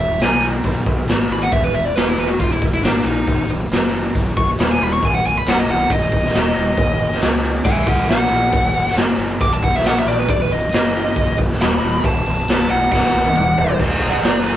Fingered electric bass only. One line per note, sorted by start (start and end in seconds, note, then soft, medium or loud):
0.00 0.18 E1 medium
0.20 0.61 B1 medium
0.65 0.85 B1 medium
0.86 1.07 B1 medium
1.08 1.28 G#1 medium
1.30 1.50 G#1 medium
1.53 1.73 E1 medium
1.73 1.94 E1 medium
1.96 2.16 E1 medium
2.18 2.38 E1 medium
2.40 2.60 E1 medium
2.62 2.82 E1 medium
2.84 3.04 G#1 medium
3.05 3.26 A#1 medium
3.27 3.48 B0 medium
3.49 3.69 B0 medium
3.71 4.12 F#1 medium
4.15 4.35 F#1 medium
4.37 4.57 F#1 medium
4.58 4.79 D#1 medium
4.80 5.01 D#1 medium
5.03 5.23 B0 medium
5.24 5.44 B0 medium
5.45 5.66 B0 medium
5.68 5.88 B0 medium
5.90 6.10 B0 medium
6.12 6.33 B0 medium
6.35 6.55 D#1 medium
6.56 6.76 D#1 medium
6.78 6.98 F#1 loud
7.00 7.20 F#1 medium
7.21 7.62 C#2 medium
7.65 7.85 C#2 medium
7.87 8.07 C#2 medium
8.09 8.29 A#1 medium
8.31 8.51 A#1 medium
8.53 8.73 F#1 loud
8.75 8.95 F#1 medium
8.96 9.17 F#1 medium
9.18 9.39 F#1 medium
9.41 9.61 F#1 medium
9.63 9.83 F#1 medium
9.83 10.04 A#1 medium
10.05 10.26 A#1 medium
10.29 10.49 B0 medium
10.50 10.71 B0 medium
10.72 11.13 F#1 medium
11.16 11.36 F#1 medium
11.38 11.58 F#1 medium
11.60 11.80 D#1 medium
11.82 12.02 D#1 medium
12.04 12.24 B0 medium
12.26 12.46 B0 medium
12.48 12.68 B0 medium
12.70 12.90 B0 medium
12.92 13.12 B0 medium
13.14 13.34 B0 medium
13.36 13.56 D#1 medium
13.58 13.80 D#1 medium
13.80 14.00 B0 medium
14.01 14.22 B0 medium
14.23 14.57 F#1 medium